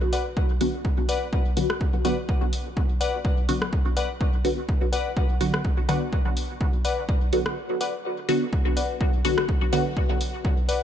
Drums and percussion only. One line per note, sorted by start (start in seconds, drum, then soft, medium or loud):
0.13 open hi-hat medium
0.37 kick loud
0.61 open hi-hat medium
0.85 kick loud
1.09 open hi-hat medium
1.33 kick loud
1.57 open hi-hat medium
1.70 cross-stick medium
1.81 kick loud
2.05 open hi-hat medium
2.29 kick loud
2.53 open hi-hat medium
2.77 kick loud
3.01 open hi-hat medium
3.25 kick loud
3.49 open hi-hat medium
3.62 cross-stick medium
3.73 kick loud
3.97 open hi-hat medium
4.21 kick loud
4.45 open hi-hat medium
4.69 kick loud
4.93 open hi-hat medium
5.17 kick loud
5.41 open hi-hat medium
5.54 cross-stick medium
5.65 kick loud
5.89 open hi-hat medium
6.13 kick loud
6.37 open hi-hat medium
6.61 kick loud
6.85 open hi-hat medium
7.09 kick loud
7.33 open hi-hat medium
7.46 cross-stick medium
7.81 open hi-hat medium
8.29 open hi-hat medium
8.53 kick loud
8.77 open hi-hat medium
9.01 kick loud
9.25 open hi-hat medium
9.38 cross-stick medium
9.49 kick loud
9.73 open hi-hat medium
9.97 kick loud
10.21 open hi-hat medium
10.45 kick loud
10.69 open hi-hat medium